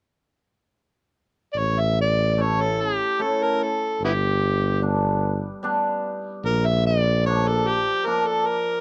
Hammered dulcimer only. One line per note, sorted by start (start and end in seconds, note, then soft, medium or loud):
2.37 2.78 A3 medium
2.37 2.79 C#4 medium
2.37 2.79 E4 medium
3.19 3.60 A3 medium
3.19 3.60 C#4 medium
3.19 3.60 E4 medium
4.82 5.61 G3 medium
4.82 5.23 B3 soft
4.82 5.23 D4 medium
5.63 6.49 G3 medium
5.63 6.04 B3 medium
5.63 6.04 D4 medium
7.25 8.05 F3 medium
7.25 7.66 A#3 medium
7.25 7.67 D4 medium
8.06 8.81 F3 medium
8.06 8.47 A#3 medium
8.06 8.47 D4 medium